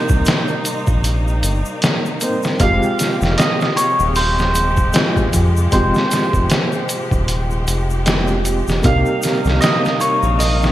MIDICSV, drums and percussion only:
0, 0, Header, 1, 2, 480
1, 0, Start_track
1, 0, Key_signature, -4, "minor"
1, 0, Tempo, 779221
1, 1602, Time_signature, 4, 2, 24, 8
1, 6603, End_track
2, 0, Start_track
2, 0, Title_t, "Drums"
2, 53, Note_on_c, 9, 82, 46
2, 59, Note_on_c, 9, 36, 100
2, 114, Note_off_c, 9, 82, 0
2, 121, Note_off_c, 9, 36, 0
2, 156, Note_on_c, 9, 82, 58
2, 163, Note_on_c, 9, 42, 88
2, 174, Note_on_c, 9, 38, 117
2, 218, Note_off_c, 9, 82, 0
2, 224, Note_off_c, 9, 42, 0
2, 235, Note_off_c, 9, 38, 0
2, 294, Note_on_c, 9, 82, 22
2, 355, Note_off_c, 9, 82, 0
2, 400, Note_on_c, 9, 42, 68
2, 402, Note_on_c, 9, 82, 101
2, 462, Note_off_c, 9, 42, 0
2, 464, Note_off_c, 9, 82, 0
2, 535, Note_on_c, 9, 82, 45
2, 538, Note_on_c, 9, 36, 95
2, 596, Note_off_c, 9, 82, 0
2, 599, Note_off_c, 9, 36, 0
2, 642, Note_on_c, 9, 42, 85
2, 644, Note_on_c, 9, 82, 61
2, 703, Note_off_c, 9, 42, 0
2, 705, Note_off_c, 9, 82, 0
2, 786, Note_on_c, 9, 82, 26
2, 848, Note_off_c, 9, 82, 0
2, 881, Note_on_c, 9, 42, 69
2, 885, Note_on_c, 9, 82, 98
2, 942, Note_off_c, 9, 42, 0
2, 946, Note_off_c, 9, 82, 0
2, 1019, Note_on_c, 9, 82, 46
2, 1081, Note_off_c, 9, 82, 0
2, 1121, Note_on_c, 9, 42, 95
2, 1129, Note_on_c, 9, 82, 55
2, 1132, Note_on_c, 9, 38, 122
2, 1182, Note_off_c, 9, 42, 0
2, 1191, Note_off_c, 9, 82, 0
2, 1193, Note_off_c, 9, 38, 0
2, 1267, Note_on_c, 9, 82, 31
2, 1328, Note_off_c, 9, 82, 0
2, 1359, Note_on_c, 9, 82, 99
2, 1362, Note_on_c, 9, 42, 70
2, 1421, Note_off_c, 9, 82, 0
2, 1423, Note_off_c, 9, 42, 0
2, 1496, Note_on_c, 9, 82, 45
2, 1508, Note_on_c, 9, 38, 44
2, 1557, Note_off_c, 9, 82, 0
2, 1570, Note_off_c, 9, 38, 0
2, 1599, Note_on_c, 9, 82, 54
2, 1600, Note_on_c, 9, 42, 90
2, 1601, Note_on_c, 9, 36, 115
2, 1661, Note_off_c, 9, 42, 0
2, 1661, Note_off_c, 9, 82, 0
2, 1663, Note_off_c, 9, 36, 0
2, 1742, Note_on_c, 9, 82, 28
2, 1803, Note_off_c, 9, 82, 0
2, 1843, Note_on_c, 9, 42, 69
2, 1845, Note_on_c, 9, 82, 97
2, 1854, Note_on_c, 9, 38, 38
2, 1904, Note_off_c, 9, 42, 0
2, 1907, Note_off_c, 9, 82, 0
2, 1916, Note_off_c, 9, 38, 0
2, 1979, Note_on_c, 9, 82, 38
2, 1993, Note_on_c, 9, 38, 40
2, 2040, Note_off_c, 9, 82, 0
2, 2054, Note_off_c, 9, 38, 0
2, 2081, Note_on_c, 9, 42, 92
2, 2092, Note_on_c, 9, 38, 111
2, 2093, Note_on_c, 9, 82, 54
2, 2142, Note_off_c, 9, 42, 0
2, 2153, Note_off_c, 9, 38, 0
2, 2155, Note_off_c, 9, 82, 0
2, 2221, Note_on_c, 9, 82, 23
2, 2233, Note_on_c, 9, 38, 47
2, 2283, Note_off_c, 9, 82, 0
2, 2294, Note_off_c, 9, 38, 0
2, 2323, Note_on_c, 9, 42, 74
2, 2327, Note_on_c, 9, 82, 94
2, 2384, Note_off_c, 9, 42, 0
2, 2388, Note_off_c, 9, 82, 0
2, 2460, Note_on_c, 9, 82, 42
2, 2522, Note_off_c, 9, 82, 0
2, 2559, Note_on_c, 9, 82, 53
2, 2561, Note_on_c, 9, 46, 87
2, 2620, Note_off_c, 9, 82, 0
2, 2622, Note_off_c, 9, 46, 0
2, 2702, Note_on_c, 9, 82, 23
2, 2711, Note_on_c, 9, 38, 43
2, 2764, Note_off_c, 9, 82, 0
2, 2772, Note_off_c, 9, 38, 0
2, 2802, Note_on_c, 9, 82, 91
2, 2805, Note_on_c, 9, 42, 73
2, 2863, Note_off_c, 9, 82, 0
2, 2867, Note_off_c, 9, 42, 0
2, 2936, Note_on_c, 9, 82, 43
2, 2940, Note_on_c, 9, 36, 92
2, 2998, Note_off_c, 9, 82, 0
2, 3002, Note_off_c, 9, 36, 0
2, 3038, Note_on_c, 9, 82, 56
2, 3043, Note_on_c, 9, 42, 96
2, 3054, Note_on_c, 9, 38, 123
2, 3099, Note_off_c, 9, 82, 0
2, 3105, Note_off_c, 9, 42, 0
2, 3116, Note_off_c, 9, 38, 0
2, 3181, Note_on_c, 9, 36, 98
2, 3183, Note_on_c, 9, 82, 27
2, 3242, Note_off_c, 9, 36, 0
2, 3244, Note_off_c, 9, 82, 0
2, 3284, Note_on_c, 9, 36, 101
2, 3284, Note_on_c, 9, 42, 67
2, 3286, Note_on_c, 9, 82, 96
2, 3345, Note_off_c, 9, 36, 0
2, 3346, Note_off_c, 9, 42, 0
2, 3348, Note_off_c, 9, 82, 0
2, 3430, Note_on_c, 9, 82, 46
2, 3491, Note_off_c, 9, 82, 0
2, 3523, Note_on_c, 9, 82, 50
2, 3524, Note_on_c, 9, 42, 94
2, 3525, Note_on_c, 9, 36, 114
2, 3584, Note_off_c, 9, 82, 0
2, 3586, Note_off_c, 9, 36, 0
2, 3586, Note_off_c, 9, 42, 0
2, 3660, Note_on_c, 9, 82, 27
2, 3672, Note_on_c, 9, 38, 40
2, 3722, Note_off_c, 9, 82, 0
2, 3734, Note_off_c, 9, 38, 0
2, 3765, Note_on_c, 9, 82, 91
2, 3766, Note_on_c, 9, 42, 69
2, 3777, Note_on_c, 9, 38, 45
2, 3827, Note_off_c, 9, 82, 0
2, 3828, Note_off_c, 9, 42, 0
2, 3839, Note_off_c, 9, 38, 0
2, 3902, Note_on_c, 9, 36, 100
2, 3905, Note_on_c, 9, 82, 39
2, 3963, Note_off_c, 9, 36, 0
2, 3967, Note_off_c, 9, 82, 0
2, 4002, Note_on_c, 9, 42, 88
2, 4004, Note_on_c, 9, 82, 56
2, 4013, Note_on_c, 9, 38, 116
2, 4064, Note_off_c, 9, 42, 0
2, 4065, Note_off_c, 9, 82, 0
2, 4075, Note_off_c, 9, 38, 0
2, 4140, Note_on_c, 9, 82, 23
2, 4202, Note_off_c, 9, 82, 0
2, 4244, Note_on_c, 9, 42, 65
2, 4246, Note_on_c, 9, 82, 90
2, 4306, Note_off_c, 9, 42, 0
2, 4308, Note_off_c, 9, 82, 0
2, 4382, Note_on_c, 9, 36, 103
2, 4386, Note_on_c, 9, 82, 35
2, 4444, Note_off_c, 9, 36, 0
2, 4448, Note_off_c, 9, 82, 0
2, 4485, Note_on_c, 9, 42, 91
2, 4488, Note_on_c, 9, 82, 57
2, 4547, Note_off_c, 9, 42, 0
2, 4549, Note_off_c, 9, 82, 0
2, 4623, Note_on_c, 9, 82, 25
2, 4685, Note_off_c, 9, 82, 0
2, 4728, Note_on_c, 9, 82, 89
2, 4729, Note_on_c, 9, 42, 71
2, 4790, Note_off_c, 9, 82, 0
2, 4791, Note_off_c, 9, 42, 0
2, 4866, Note_on_c, 9, 82, 40
2, 4928, Note_off_c, 9, 82, 0
2, 4964, Note_on_c, 9, 42, 92
2, 4966, Note_on_c, 9, 82, 51
2, 4975, Note_on_c, 9, 38, 127
2, 5026, Note_off_c, 9, 42, 0
2, 5028, Note_off_c, 9, 82, 0
2, 5037, Note_off_c, 9, 38, 0
2, 5097, Note_on_c, 9, 82, 24
2, 5159, Note_off_c, 9, 82, 0
2, 5206, Note_on_c, 9, 42, 69
2, 5209, Note_on_c, 9, 82, 92
2, 5267, Note_off_c, 9, 42, 0
2, 5271, Note_off_c, 9, 82, 0
2, 5344, Note_on_c, 9, 82, 39
2, 5357, Note_on_c, 9, 38, 45
2, 5406, Note_off_c, 9, 82, 0
2, 5418, Note_off_c, 9, 38, 0
2, 5441, Note_on_c, 9, 82, 51
2, 5446, Note_on_c, 9, 36, 117
2, 5447, Note_on_c, 9, 42, 91
2, 5502, Note_off_c, 9, 82, 0
2, 5508, Note_off_c, 9, 36, 0
2, 5509, Note_off_c, 9, 42, 0
2, 5579, Note_on_c, 9, 82, 26
2, 5640, Note_off_c, 9, 82, 0
2, 5682, Note_on_c, 9, 82, 98
2, 5688, Note_on_c, 9, 42, 65
2, 5699, Note_on_c, 9, 38, 39
2, 5743, Note_off_c, 9, 82, 0
2, 5749, Note_off_c, 9, 42, 0
2, 5761, Note_off_c, 9, 38, 0
2, 5818, Note_on_c, 9, 82, 38
2, 5835, Note_on_c, 9, 38, 38
2, 5880, Note_off_c, 9, 82, 0
2, 5897, Note_off_c, 9, 38, 0
2, 5923, Note_on_c, 9, 82, 57
2, 5925, Note_on_c, 9, 42, 86
2, 5936, Note_on_c, 9, 38, 121
2, 5985, Note_off_c, 9, 82, 0
2, 5987, Note_off_c, 9, 42, 0
2, 5998, Note_off_c, 9, 38, 0
2, 6067, Note_on_c, 9, 82, 25
2, 6075, Note_on_c, 9, 38, 47
2, 6129, Note_off_c, 9, 82, 0
2, 6137, Note_off_c, 9, 38, 0
2, 6164, Note_on_c, 9, 82, 83
2, 6168, Note_on_c, 9, 42, 69
2, 6225, Note_off_c, 9, 82, 0
2, 6229, Note_off_c, 9, 42, 0
2, 6300, Note_on_c, 9, 82, 39
2, 6361, Note_off_c, 9, 82, 0
2, 6407, Note_on_c, 9, 46, 82
2, 6408, Note_on_c, 9, 82, 55
2, 6468, Note_off_c, 9, 46, 0
2, 6470, Note_off_c, 9, 82, 0
2, 6543, Note_on_c, 9, 82, 24
2, 6555, Note_on_c, 9, 38, 46
2, 6603, Note_off_c, 9, 38, 0
2, 6603, Note_off_c, 9, 82, 0
2, 6603, End_track
0, 0, End_of_file